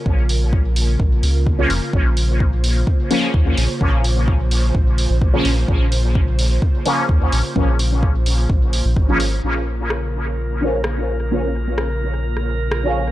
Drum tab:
HH |--o---o---o---o-|--o---o---o---o-|--o---o---o---o-|--o---o---o---o-|
SD |----------------|----------------|----------------|----------------|
BD |o---o---o---o---|o---o---o---o---|o---o---o---o---|o---o---o---o---|

HH |--o---o---o---o-|----------------|----------------|
SD |----------------|----r-------r---|----r----r--r---|
BD |o---o---o---o---|----------------|----------------|